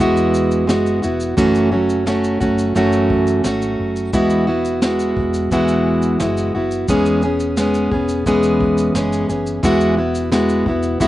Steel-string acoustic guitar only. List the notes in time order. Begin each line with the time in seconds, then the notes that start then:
0.00 E3 G#3 B3 E4 F#4
0.67 G#3 B3 E4 F#4
1.02 B3 E4 F#4
1.37 F#2 E3 F#3 A3 C#4 F#4
1.72 F#3 A3 C#4 F#4
2.06 F#3 A3 C#4 F#4
2.40 F#3 A3 C#4 F#4
2.75 F#2 E3 F#3 A3 C#4 F#4
3.44 F#3 A3 C#4 F#4
4.13 E3 G#3 B3 E4 F#4
4.47 B3 E4 F#4
4.82 G#3 B3 E4 F#4
5.52 E3 G#3 B3 E4 F#4
6.20 G#3 B3 E4 F#4
6.55 B3 E4 F#4
6.88 E3 G#3 B3 C#4 G#4
7.24 B3 C#4 G#4
7.58 G#3 B3 C#4 G#4
7.91 B3 C#4 G#4
8.26 E3 G#3 B3 C#4 G#4
8.95 G#3 B3 C#4 G#4
9.29 B3 C#4 G#4
9.63 E3 G#3 B3 E4 F#4
9.97 B3 E4 F#4
10.32 G#3 B3 E4 F#4
10.67 B3 E4 F#4
11.00 E3 G#3 B3 E4 F#4